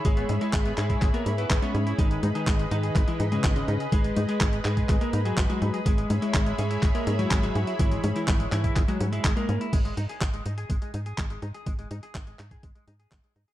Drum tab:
CC |----------------|----------------|----------------|----------------|
HH |xxxxxxxxxxxxxxxx|xxxxxxxxxxxxxxxx|xxxxxxxxxxxxxxxx|xxxxxxxxxxxxxxxx|
CP |----x-x-x---x---|----x---x---x---|----x-x-x---x---|----x---x---x---|
CG |--o----------oo-|--o--------o----|--o----------oo-|--o--------o----|
BD |o---o--oo---o---|o---o---o---o---|o---o--oo---o---|o---o---o---o---|

CC |----------------|x---------------|----------------|
HH |xxxxxxxxxxxxxxxx|xxxxxxxxxxxxxxxx|xxxxxxxxxxxxxxxx|
CP |----x-x-x---x---|----x-------x---|----x-x-----x---|
CG |--o------o---oo-|----------------|----------------|
BD |o---o--oo---o---|o---o---o---o---|o---o--oo---o---|